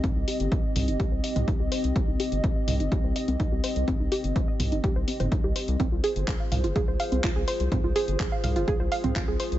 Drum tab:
HH |x-oxx-oxx-oxx-ox|x-oxx-oxx-oxx-ox|x-oxx-oxx-oxx-ox|x-oxx-oxx-ox--ox|
CP |----------------|----------------|----------------|----x-------x---|
T2 |o-----o----o----|------o---------|o-----o----o----|------o---------|
BD |o---o---o---o---|o---o---o---o---|o---o---o---o---|o---o---o---o---|

HH |x-oxx-oxx-oxx-ox|
CP |----x-------x---|
T2 |o-----o----o----|
BD |o---o---o---o---|